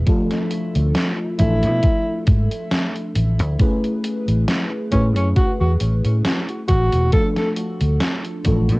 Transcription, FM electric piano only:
0.06 1.34 F3 medium
0.06 1.34 A3 medium
0.06 1.35 D4 medium
0.06 1.35 F4 medium
0.06 1.36 A4 loud
1.38 3.55 F3 medium
1.38 3.55 A3 medium
1.38 3.55 D4 medium
1.38 3.56 A4 medium
3.59 4.87 A3 medium
3.59 4.87 C#4 medium
3.59 4.88 E4 medium
3.59 4.88 G#4 medium
3.59 4.89 B4 loud
4.91 7.08 A3 medium
4.91 7.08 C#4 medium
4.91 7.08 E4 medium
4.91 7.09 G#4 medium
4.91 7.09 B4 medium
7.11 8.40 F3 medium
7.11 8.40 A3 medium
7.11 8.41 D4 medium
7.11 8.41 F4 medium
7.11 8.41 A4 loud
8.44 8.80 F3 medium
8.44 8.80 A3 medium
8.44 8.80 D4 medium
8.44 8.80 F4 medium
8.44 8.80 A4 medium

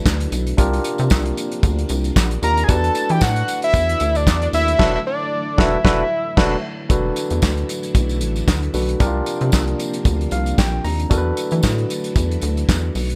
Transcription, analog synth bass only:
0.06 0.27 D2 medium
0.32 0.53 B1 medium
0.58 0.80 C2 loud
0.99 1.09 C3 loud
1.11 1.32 C2 loud
1.63 1.85 D2 loud
1.90 2.11 C2 loud
2.16 2.38 A#1 medium
2.42 2.64 D#2 medium
2.69 2.90 E2 loud
3.10 3.19 E3 loud
3.22 3.43 A2 loud
3.74 3.95 E2 loud
4.01 4.28 D2 loud
4.27 4.48 E2 medium
4.53 4.74 D#2 medium
4.79 4.98 E1 loud
5.58 5.77 E1 loud
5.85 6.03 E1 loud
6.37 6.56 E1 loud
6.90 7.11 E1 loud
7.31 7.40 E2 medium
7.43 7.64 D2 medium
7.95 8.23 B1 loud
8.21 8.43 A1 loud
8.48 8.69 D2 medium
8.74 8.95 B1 medium
9.00 9.22 C2 loud
9.41 9.51 C3 loud
9.53 9.74 C2 loud
10.05 10.27 D2 loud
10.32 10.53 C2 medium
10.58 10.80 A#1 medium
10.84 11.06 D#2 medium
11.11 11.32 E2 loud
11.52 11.61 E3 medium
11.64 11.85 A2 loud
12.16 12.37 E2 loud
12.43 12.64 D2 loud
12.69 12.90 E2 medium
12.95 13.15 B1 medium

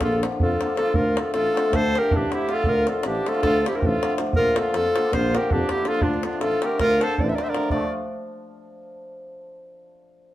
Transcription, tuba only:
0.02 0.26 A#1 loud
0.42 0.54 F2 loud
0.94 1.18 D2 loud
1.35 1.48 A1 medium
1.72 1.96 D2 loud
2.13 2.25 A1 loud
2.66 2.89 D2 loud
3.04 3.18 A1 medium
3.43 3.67 D2 loud
3.83 3.95 A1 loud
4.34 4.58 A#1 medium
4.75 4.88 F2 medium
5.13 5.36 A#1 loud
5.51 5.63 F2 loud
6.02 6.26 D2 medium
6.41 6.55 A1 medium
6.80 7.04 D2 loud
7.20 7.31 A1 loud
7.71 7.92 D2 medium

